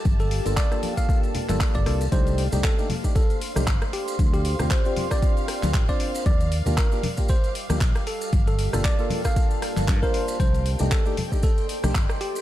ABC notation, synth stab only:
X:1
M:4/4
L:1/16
Q:"Swing 16ths" 1/4=116
K:Cdor
V:1 name="Synth stab"
z3 [B,DFA]2 [B,DFA]2 [B,DA]4 [B,DFA]3 [B,DFA] z | [A,DEG]3 [A,DEG]2 [A,DEG] z [A,DEG] z3 [A,DEG] z4 | z3 [CDFG]2 [CDFG]2 [DFG]6 [CDFc]3 | z3 [B,DFG]2 [B,DFG] z [B,DFG] z3 [B,DFG] z4 |
z3 [B,DFA]2 [B,DFA]2 [B,DFA]6 [B,DFc]3 | z3 [A,DEG]2 [A,DEG] z [A,DEG] z3 [A,DEG] z4 |]